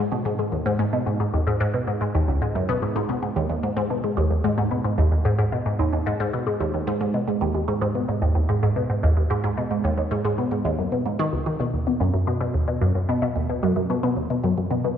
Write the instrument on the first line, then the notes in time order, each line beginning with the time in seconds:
synth arpeggio sound
0.12 B2
0.25 G#2
0.39 G#2
0.52 D#2
0.66 G#2
0.79 G#2
0.93 B2
1.06 G#2
1.20 G#2
1.34 D#2
1.47 G#2
1.60 G#2
1.74 B2
1.88 G#2
2.01 G#2
2.15 D#2
2.28 C#2
2.42 G#2
2.55 F#2
2.69 B2
2.82 G#2
2.96 G#2
3.09 B2
3.23 G#2
3.36 D#2
3.50 D#2
3.63 G#2
3.77 G#2
3.90 B2
4.04 G#2
4.17 D#2
4.31 D#2
4.44 G#2
4.58 G#2
4.71 B2
4.85 G#2
4.98 D#2
5.12 D#2
5.25 G#2
5.39 G#2
5.52 B2
5.66 G#2
5.79 D#2
5.93 D#2
6.06 G#2
6.20 G#2
6.33 B2
6.47 G#2
6.60 D#2
6.74 D#2
6.87 G#2
7.01 G#2
7.14 B2
7.28 G#2
7.41 D#2
7.55 D#2
7.68 G#2
7.81 G#2
7.95 B2
8.09 G#2
8.22 D#2
8.35 D#2
8.49 G#2
8.63 G#2
8.76 B2
8.90 G#2
9.03 D#2
9.17 D#2
9.30 G#2
9.44 G#2
9.57 B2
9.71 G#2
9.84 D#2
9.98 D#2
10.11 G#2
10.25 G#2
10.38 B2
10.52 G#2
10.65 D#2
10.78 F#2
10.92 B2
11.06 G#2
11.19 D#3
11.33 C#2
11.46 D#3
11.60 B2
11.73 D#2
11.87 B2
12.00 F#2
12.14 F#2
12.27 B2
12.41 B2
12.54 D#2
12.68 B2
12.81 F#2
12.95 F#2
13.09 B2
13.22 B2
13.36 D#2
13.50 B2
13.63 F#2
13.76 F#2
13.90 B2
14.03 B2
14.17 D#2
14.30 B2
14.44 F#2
14.58 F#2
14.71 B2
14.84 B2